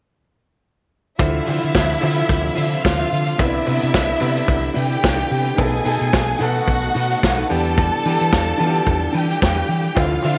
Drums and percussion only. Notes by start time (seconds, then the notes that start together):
1.19 kick, closed hi-hat
1.47 open hi-hat
1.63 closed hi-hat
1.74 kick, snare, closed hi-hat
2.03 open hi-hat
2.18 closed hi-hat
2.29 kick, closed hi-hat
2.57 open hi-hat
2.73 closed hi-hat
2.85 kick, snare, closed hi-hat
3.13 open hi-hat
3.27 closed hi-hat
3.39 kick, closed hi-hat
3.67 open hi-hat
3.82 closed hi-hat
3.94 kick, snare, closed hi-hat
4.22 open hi-hat
4.37 closed hi-hat
4.48 kick, closed hi-hat
4.76 open hi-hat
4.92 closed hi-hat
5.04 kick, snare, closed hi-hat
5.32 open hi-hat
5.47 closed hi-hat
5.58 kick, closed hi-hat
5.86 open hi-hat
6.01 closed hi-hat
6.13 kick, snare, closed hi-hat
6.41 open hi-hat
6.56 closed hi-hat
6.67 kick, closed hi-hat
6.96 open hi-hat
7.11 closed hi-hat
7.23 kick, snare, closed hi-hat
7.51 open hi-hat
7.66 closed hi-hat
7.78 kick, closed hi-hat
8.05 open hi-hat
8.20 closed hi-hat
8.32 kick, snare, closed hi-hat
8.60 open hi-hat
8.76 closed hi-hat
8.87 kick, closed hi-hat
9.15 open hi-hat
9.30 closed hi-hat
9.42 kick, snare, closed hi-hat
9.70 open hi-hat
9.84 closed hi-hat
9.97 kick, closed hi-hat
10.24 open hi-hat